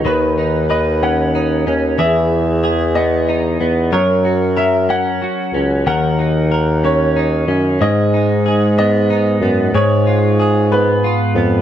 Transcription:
<<
  \new Staff \with { instrumentName = "Grand piano" } { \time 6/8 \key b \major \tempo 4. = 62 b'4 dis''8 fis''4 r8 | e''4. dis''4. | cis''4 e''8 fis''4. | fis''4. cis''4. |
dis''4. dis''4. | cis''4. b'4. | }
  \new Staff \with { instrumentName = "Clean electric guitar" } { \time 6/8 \key b \major <dis b'>8 dis'8 b'8 cis'8 dis'8 cis'8 | <e gis'>4 gis'8 b8 dis'8 b8 | <fis ais'>8 fis'8 ais'8 cis'8 fis'8 cis'8 | <dis ais'>8 dis'8 ais'8 cis'8 dis'8 cis'8 |
<gis, gis'>8 dis'8 gis'8 b8 dis'8 b8 | <gis, gis'>8 eis'8 gis'8 b8 eis'8 b8 | }
  \new Staff \with { instrumentName = "Bassoon" } { \clef bass \time 6/8 \key b \major dis,2~ dis,8 dis,8 | e,2~ e,8 e,8 | fis,2 r8 cis,8 | dis,2~ dis,8 fis,8 |
gis,2~ gis,8 fis,8 | gis,2 r8 eis,8 | }
>>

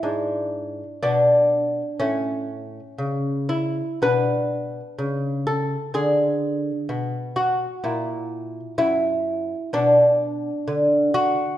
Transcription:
<<
  \new Staff \with { instrumentName = "Lute" } { \time 4/4 \key b \dorian \tempo 4 = 63 << { e'4 d'4 cis'4. e'8 | b'4. a'8 gis'4. fis'8~ | fis'4 e'4 d'4. fis'8 | } \\ { d'2 r2 | d'1 | e'2 r2 | } >> }
  \new Staff \with { instrumentName = "Lute" } { \clef bass \time 4/4 \key b \dorian gis,4 b,4 a,4 cis4 | b,4 cis4 d4 b,4 | ais,4 fis,4 b,4 d4 | }
>>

